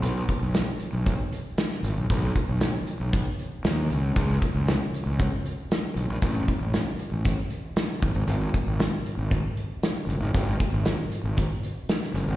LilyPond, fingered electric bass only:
\new Staff \with { instrumentName = "Fingered electric bass" } { \clef bass \time 4/4 \key gis \phrygian \tempo 4 = 116 b,,8 r16 b,,8 r8 b,,8 r4 r16 gis,,16 b,,16 | b,,8 r16 b,,8 r8 b,,8 r8. dis,8 cis,8 | cis,8 r16 cis,8 r8 cis,8 r4 r16 b,,16 ais,,16 | a,,8 r16 a,,8 r8 a,,8 r4 r16 gis,,16 gis,,16 |
gis,,8 r16 gis,,8 r8 gis,,8 r4 r16 fis,,16 gis,,16 | gis,,8 r16 gis,,8 r8 gis,,8 r4 r16 fis,,16 gis,,16 | }